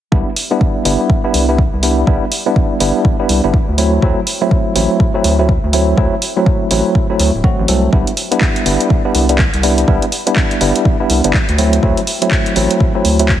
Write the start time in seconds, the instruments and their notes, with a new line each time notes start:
0.12 analog synth bass C2, tine electric piano G3 B3 D4 E4, kick
0.36 open hi-hat
0.51 tine electric piano G3 B3 D4 E4
0.61 kick
0.85 analog synth bass G1, tine electric piano G3 B3 D4 E4, open hi-hat
1.10 kick
1.24 tine electric piano G3 B3 D4 E4
1.34 analog synth bass C2, open hi-hat
1.48 tine electric piano G3 B3 D4 E4
1.58 kick
1.73 analog synth bass C2
1.83 tine electric piano G3 B3 D4 E4, open hi-hat
2.07 analog synth bass C2, tine electric piano G3 B3 D4 E4, kick
2.32 open hi-hat
2.46 tine electric piano G3 B3 D4 E4
2.56 kick
2.80 analog synth bass G1, tine electric piano G3 B3 D4 E4, open hi-hat
3.05 kick
3.19 tine electric piano G3 B3 D4 E4
3.29 analog synth bass C2, open hi-hat
3.43 analog synth bass G1, tine electric piano G3 B3 D4 E4
3.54 kick
3.68 analog synth bass D2
3.78 tine electric piano F#3 A3 C4 E4, open hi-hat
4.02 analog synth bass D2, tine electric piano F#3 A3 C4 E4, kick
4.27 open hi-hat
4.41 tine electric piano F#3 A3 C4 E4
4.51 kick
4.75 analog synth bass A1, tine electric piano F#3 A3 C4 E4, open hi-hat
5.00 kick
5.14 tine electric piano F#3 A3 C4 E4
5.24 analog synth bass D2, open hi-hat
5.39 tine electric piano F#3 A3 C4 E4
5.49 kick
5.63 analog synth bass D2
5.73 tine electric piano F#3 A3 C4 E4, open hi-hat
5.97 analog synth bass D2, tine electric piano F#3 A3 C4 E4, kick
6.22 open hi-hat
6.36 tine electric piano F#3 A3 C4 E4
6.46 kick
6.70 analog synth bass A1, tine electric piano F#3 A3 C4 E4, open hi-hat
6.95 kick
7.09 tine electric piano F#3 A3 C4 E4
7.20 analog synth bass D2, open hi-hat
7.34 analog synth bass D1
7.44 tine electric piano F#3 A3 C4 F#4, kick
7.59 analog synth bass A1
7.68 analog synth bass C2, tine electric piano F#3 A3 C4 A4, open hi-hat
7.92 analog synth bass C2, tine electric piano G3 B3 D4 E4, kick
8.07 closed hi-hat
8.17 open hi-hat
8.31 tine electric piano G3 B3 D4 E4, closed hi-hat
8.41 kick, clap
8.56 closed hi-hat
8.66 analog synth bass G1, tine electric piano G3 B3 D4 E4, open hi-hat
8.80 closed hi-hat
8.90 kick
9.05 tine electric piano G3 B3 D4 E4
9.15 analog synth bass C2, open hi-hat
9.29 tine electric piano G3 B3 D4 E4, closed hi-hat
9.39 kick, clap
9.54 analog synth bass C2, closed hi-hat
9.63 tine electric piano G3 B3 D4 E4, open hi-hat
9.78 closed hi-hat
9.88 analog synth bass C2, tine electric piano G3 B3 D4 E4, kick
10.02 closed hi-hat
10.12 open hi-hat
10.27 tine electric piano G3 B3 D4 E4, closed hi-hat
10.36 kick, clap
10.51 closed hi-hat
10.61 analog synth bass G1, tine electric piano G3 B3 D4 E4, open hi-hat
10.76 closed hi-hat
10.85 kick
11.00 tine electric piano G3 B3 D4 E4
11.10 analog synth bass C2, open hi-hat
11.24 analog synth bass G1, tine electric piano G3 B3 D4 E4, closed hi-hat
11.34 kick, clap
11.49 analog synth bass D2, closed hi-hat
11.58 tine electric piano F#3 A3 C4 E4, open hi-hat
11.73 closed hi-hat
11.83 analog synth bass D2, tine electric piano F#3 A3 C4 E4, kick
11.97 closed hi-hat
12.07 open hi-hat
12.22 tine electric piano F#3 A3 C4 E4, closed hi-hat
12.31 kick, clap
12.46 closed hi-hat
12.56 analog synth bass A1, tine electric piano F#3 A3 C4 E4, open hi-hat
12.71 closed hi-hat
12.80 kick
12.95 tine electric piano F#3 A3 C4 E4
13.05 analog synth bass D2, open hi-hat
13.19 tine electric piano F#3 A3 C4 E4, closed hi-hat
13.29 kick, clap